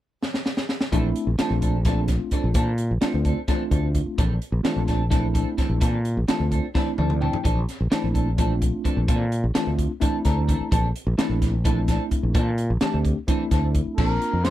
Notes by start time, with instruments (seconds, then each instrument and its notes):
0.23 snare
0.34 snare
0.46 snare
0.57 snare
0.69 snare
0.81 snare
0.92 fretless electric bass A#1, clean electric guitar E3 C4 D4 A4, tine electric piano A3 C4 D4 E4, kick, closed hi-hat
1.16 closed hi-hat
1.27 fretless electric bass A#1
1.38 clean electric guitar E3 C4 D4 A4, tine electric piano A3 C4 D4 F4, snare, closed hi-hat
1.50 fretless electric bass A#1
1.62 clean electric guitar C4 D4 A4, kick, closed hi-hat
1.85 clean electric guitar E3 C4 D4 A4, tine electric piano A3 C4 D4 F4, kick, snare, closed hi-hat
2.08 kick, snare, closed hi-hat
2.31 clean electric guitar E3 C4 D4 A4, muted fretless electric bass stroke, kick, closed hi-hat
2.44 fretless electric bass A#1
2.54 fretless electric bass A#2, clean electric guitar E3 C4 D4 A4, kick, closed hi-hat
2.78 closed hi-hat
2.91 fretless electric bass A#1
3.01 clean electric guitar E3 C4 D4 A4, tine electric piano A3 C4 D4 F4, snare, closed hi-hat
3.14 fretless electric bass D2
3.25 clean electric guitar C4 D4 A4, kick, closed hi-hat
3.48 clean electric guitar E3 C4 D4 A4, tine electric piano A3 C4 D4 F4, kick, snare, closed hi-hat
3.71 fretless electric bass D2, clean electric guitar C4 D4 A4, kick, closed hi-hat
3.95 kick, closed hi-hat
4.06 muted fretless electric bass stroke
4.18 fretless electric bass A#1, clean electric guitar E3 C4 D4 A4, kick, closed hi-hat
4.42 closed hi-hat
4.52 fretless electric bass A#1
4.63 clean electric guitar E3 C4 D4 A4, tine electric piano A3 C4 D4 F4, snare, closed hi-hat
4.76 fretless electric bass A#1
4.88 clean electric guitar C4 D4 A4, kick, snare, closed hi-hat
5.10 clean electric guitar E3 C4 D4 A4, tine electric piano A3 C4 D4 E4, kick, snare, closed hi-hat
5.34 clean electric guitar C4 D4 A4, kick, closed hi-hat
5.58 clean electric guitar E3 C4 D4 A4, muted fretless electric bass stroke, kick, snare, closed hi-hat
5.70 fretless electric bass A#1
5.81 fretless electric bass A#2, clean electric guitar E3 C4 D4 A4, kick, closed hi-hat
6.05 closed hi-hat
6.17 fretless electric bass A#1
6.28 clean electric guitar E3 C4 D4 A4, tine electric piano A3 C4 D4 F4, snare, closed hi-hat
6.40 fretless electric bass D2
6.51 clean electric guitar C4 D4 A4, kick, closed hi-hat
6.75 clean electric guitar E3 C4 D4 A4, tine electric piano A3 C4 D4 E4, kick, snare
6.98 fretless electric bass D2, clean electric guitar C4 D4 A4, tine electric piano D5, high tom
7.10 mid tom
7.21 clean electric guitar E3 C4 D4 A4, tine electric piano G5, mid tom
7.33 muted fretless electric bass stroke, floor tom
7.44 fretless electric bass A#1, clean electric guitar E3 C4 D4 A4, kick, closed hi-hat
7.69 snare, closed hi-hat
7.81 fretless electric bass A#1
7.90 clean electric guitar E3 C4 D4 A4, tine electric piano A3 C4 D4 E4, snare, closed hi-hat
8.04 fretless electric bass A#1
8.14 clean electric guitar C4 D4 A4, kick, closed hi-hat
8.37 clean electric guitar E3 C4 D4 A4, tine electric piano A3 C4 D4 F4, kick, closed hi-hat
8.62 kick, closed hi-hat
8.84 clean electric guitar E3 C4 D4 A4, muted fretless electric bass stroke, kick, closed hi-hat
8.97 fretless electric bass A#1
9.08 fretless electric bass A#2, clean electric guitar E3 C4 D4 A4, kick, closed hi-hat
9.32 closed hi-hat
9.44 fretless electric bass A#1
9.54 clean electric guitar E3 C4 D4 A4, tine electric piano A3 C4 D4 F4, muted fretless electric bass stroke, snare, closed hi-hat
9.67 fretless electric bass D2
9.79 kick, closed hi-hat
10.00 clean electric guitar E3 C4 D4 A4, tine electric piano A3 C4 D4 E4, kick, closed hi-hat
10.25 fretless electric bass D2, clean electric guitar C4 D4 A4, tine electric piano A#5, kick, snare, closed hi-hat
10.48 clean electric guitar E3 C4 D4 A4, kick, closed hi-hat
10.61 muted fretless electric bass stroke
10.71 fretless electric bass A#1, clean electric guitar E3 C4 D4 A4, kick, closed hi-hat
10.96 closed hi-hat
11.07 fretless electric bass A#1
11.18 clean electric guitar E3 C4 D4 A4, tine electric piano A3 C4 D4 E4, snare, closed hi-hat
11.29 fretless electric bass A#1
11.42 kick, snare, closed hi-hat
11.65 clean electric guitar E3 C4 D4 A4, tine electric piano A3 C4 D4 E4, kick, closed hi-hat
11.88 clean electric guitar C4 D4 A4, kick, snare, closed hi-hat
12.11 muted fretless electric bass stroke, kick, closed hi-hat
12.23 fretless electric bass A#1
12.35 fretless electric bass A#2, clean electric guitar E3 C4 D4 A4, kick, closed hi-hat
12.58 closed hi-hat
12.70 fretless electric bass A#1
12.81 clean electric guitar E3 C4 D4 A4, tine electric piano A3 C4 D4 G4, snare, closed hi-hat
12.94 fretless electric bass D2
13.05 kick, closed hi-hat
13.27 clean electric guitar E3 C4 D4 A4, tine electric piano A3 C4 D4 E4, kick, closed hi-hat
13.51 fretless electric bass D2, clean electric guitar C4 D4 A4, kick, snare, closed hi-hat
13.75 kick, closed hi-hat
13.86 muted fretless electric bass stroke
13.97 fretless electric bass A#1, clean electric guitar F3 C4 D4 A4, tine electric piano A#3 C4 D4 F4, muted trumpet A#4, kick, crash
14.22 closed hi-hat
14.33 fretless electric bass F2
14.44 clean electric guitar F3 C4 D4 A4, tine electric piano A3 C4 D4 G4, muted trumpet C5, snare, closed hi-hat